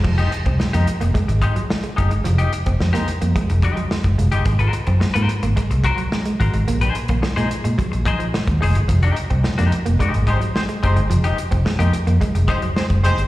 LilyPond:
<<
  \new Staff \with { instrumentName = "Horn section" } { \time 4/4 \key f \dorian \tempo 4 = 108 r1 | r1 | r1 | r1 |
r2 r8 <c' aes' c''>16 r16 <c' aes' c''>16 r16 <c' aes' c''>8 | r2 r8 <c' aes' c''>16 r16 <c' aes' c''>16 r16 <c' aes' c''>8 | }
  \new Staff \with { instrumentName = "Clean electric guitar" } { \time 4/4 \key f \dorian r16 <aes ees' g'>16 r8. <aes ees' g'>16 r4 <aes ees' g'>16 r8. <aes ees' g'>16 r16 | r16 <aes ees' g'>16 r8. <aes ees' g'>16 r4 <aes ees' g'>16 r4 <aes ees' g'>16 | r16 <ges' bes' c''>16 r8. <ges' bes' c''>16 r4 <ges' bes' c''>16 r8. <ges' bes' c''>16 r16 | r16 <ees' aes' c''>16 r8. <ees' aes' c''>16 r4 <ees' aes' c''>16 r8. <ees' aes' c''>16 r16 |
r16 <aes ees' g'>16 r8. <aes ees' g'>16 r8 <aes ees' g'>16 r16 <aes ees' g'>16 r8. <aes ees' g'>16 r16 | r16 <aes ees' g'>16 r8. <aes ees' g'>16 r4 <aes ees' g'>16 r8. <aes ees' g'>16 r16 | }
  \new Staff \with { instrumentName = "Clean electric guitar" } { \clef bass \time 4/4 \key f \dorian f16 r8 c'16 r16 bes16 r16 bes16 aes16 r8 ges16 r16 aes16 r16 aes16 | f16 r8 c'16 r16 bes16 r16 bes16 aes16 r8 ges16 r8 aes16 r16 | aes16 r8 c'16 r16 bes16 r16 bes16 aes16 r8 ges16 r16 aes16 r16 aes16 | bes16 r8 bes16 r16 aes16 r16 aes16 ges16 r8 f16 r8 aes16 r16 |
f16 r8 c'16 r16 bes16 r16 bes16 aes16 r8 ges16 r16 aes16 r16 aes16 | f16 r8 c'16 r16 bes16 r16 bes16 aes16 r8 ges16 r8 aes16 r16 | }
  \new Staff \with { instrumentName = "Fingered electric bass" } { \clef bass \time 4/4 \key f \dorian f,,8 r16 c,16 r16 f,16 r16 f,,16 r16 aes,,8 r8. ges,,16 g,,16 | f,,8 r16 f,,16 f,16 r8 f,16 r16 f,,8 r8 ges,,16 f,,16 g,,16 | aes,,8 r16 ges,16 r16 aes,16 r16 aes,,16 r16 c,8 r8. aes,,16 aes,,16 | bes,,8 r16 bes,,16 r16 bes,16 r16 bes,16 r16 bes,,8 r8 ees,16 f,,16 g,,16 |
f,,8 r16 c,16 r16 f,16 r16 f,,16 r16 aes,,8 r8. ges,,16 g,,16 | f,,8 r16 f,,16 r16 f,16 r16 f,16 r16 f,,8 r8 ges,,16 f,,16 g,,16 | }
  \new DrumStaff \with { instrumentName = "Drums" } \drummode { \time 4/4 <cymc bd>16 hh16 hh16 <hh bd>16 sn16 <hh sn>16 hh16 hh16 <hh bd>16 hh16 <hh bd>16 hh16 sn16 hh16 <hh bd>16 hh16 | hh16 hh16 hh16 <hh bd>16 sn16 <hh sn>16 hh16 hh16 <hh bd>16 hh16 <hh bd>16 hh16 sn16 <hh bd>16 hh16 hh16 | <hh bd>16 hh16 hh16 <hh bd>16 sn16 hh16 hh16 hh16 <hh bd>16 hh16 <hh bd>16 hh16 sn16 hh16 <hh bd>16 hh16 | hh16 hh16 hh16 <hh bd>16 sn16 <hh sn>16 hh16 hh16 <hh bd>16 hh16 <hh bd>16 hh16 sn16 <hh bd>16 hho16 hh16 |
<hh bd>16 hh16 hh16 <hh bd>16 sn16 <hh sn>16 hh16 hh16 <hh bd>16 hh16 <hh bd>16 hh16 sn16 hh16 <hh bd>16 hh16 | hh16 hh16 hh16 <hh bd>16 sn16 hh16 hh16 hh16 <hh bd>16 hh16 <hh bd>16 hh16 sn16 <hh bd>16 hh16 hh16 | }
>>